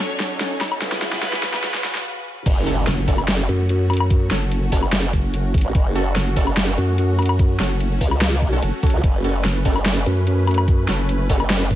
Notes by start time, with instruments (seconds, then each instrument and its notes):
Already playing: supersaw synth F#2 F#3 C#4 A4, violin section C#4 C#5, ambient pad A4 C#5 F#5, riser
0.20 snare, closed hi-hat
0.40 violin section C#4 C#5, snare, closed hi-hat
0.61 snare, closed hi-hat, low woodblock
0.65 closed hi-hat
0.68 closed hi-hat, low woodblock
0.82 supersaw synth C#2 C#3 F4 G#4, violin section B3 B4, ambient pad G#4, snare, closed hi-hat
0.92 snare
1.02 snare, closed hi-hat
1.13 snare
1.23 snare, closed hi-hat
1.33 snare
1.43 snare, closed hi-hat
1.54 snare, low woodblock
1.64 snare, closed hi-hat
1.74 snare
1.84 snare, closed hi-hat
1.95 snare
2.46 wobble bass F#1, supersaw synth A3 C#4 F#4, kick, closed hi-hat, crash, impact
2.67 synth stab C#4 F#4 A4, closed hi-hat
2.87 wobble bass F#1, snare, closed hi-hat
3.08 wobble bass F#1, synth stab C#4 F#4 A4, kick, open hi-hat
3.18 low woodblock
3.28 snare, closed hi-hat
3.49 wobble bass F#2, closed hi-hat
3.69 closed hi-hat
3.90 closed hi-hat, low woodblock
3.93 closed hi-hat
3.97 closed hi-hat, low woodblock
4.10 kick, closed hi-hat
4.31 wobble bass F#1, synth stab C#4 F#4 A4, snare, closed hi-hat
4.52 closed hi-hat
4.72 wobble bass F#1, synth stab C#4 F#4 A4, kick, open hi-hat
4.83 low woodblock
4.93 snare, closed hi-hat
5.13 wobble bass F#1, kick, closed hi-hat
5.34 closed hi-hat
5.54 wobble bass G#1, kick, closed hi-hat
5.58 closed hi-hat
5.61 wobble bass A1, closed hi-hat
5.75 wobble bass F#1, kick, closed hi-hat
5.95 synth stab C#4 F#4 A4, closed hi-hat
6.16 wobble bass F#1, snare, closed hi-hat
6.36 wobble bass F#1, synth stab C#4 F#4 A4, kick, open hi-hat
6.47 low woodblock
6.57 snare, closed hi-hat
6.78 wobble bass F#2, closed hi-hat
6.98 closed hi-hat
7.19 closed hi-hat, low woodblock
7.22 closed hi-hat
7.26 closed hi-hat, low woodblock
7.39 kick, closed hi-hat
7.60 wobble bass F#1, synth stab C#4 F#4 A4, snare, closed hi-hat
7.80 closed hi-hat
8.01 wobble bass C#2, kick, open hi-hat
8.11 low woodblock
8.21 snare, closed hi-hat
8.42 wobble bass C2, kick, closed hi-hat
8.52 synth stab C#4 F#4 A4
8.62 wobble bass F#1, closed hi-hat
8.83 synth stab C#4 F#4 A4, kick, closed hi-hat
8.87 closed hi-hat
8.90 wobble bass C#2, closed hi-hat
9.04 wobble bass F#1, supersaw synth B4, kick, closed hi-hat
9.24 synth stab C#4 F#4 A4, closed hi-hat
9.45 wobble bass F#1, snare, closed hi-hat
9.65 wobble bass F#1, synth stab C#4 F#4 A4, kick, open hi-hat
9.76 low woodblock
9.86 snare, closed hi-hat
10.06 wobble bass F#2, closed hi-hat
10.27 closed hi-hat
10.47 closed hi-hat, low woodblock
10.51 closed hi-hat
10.54 closed hi-hat, low woodblock
10.68 kick, closed hi-hat
10.88 wobble bass F#1, synth stab C#4 F#4 A4, snare, closed hi-hat
11.09 closed hi-hat
11.30 wobble bass F#1, synth stab C#4 F#4 A4, kick, open hi-hat
11.40 low woodblock
11.50 snare, closed hi-hat
11.71 wobble bass F#1, kick, closed hi-hat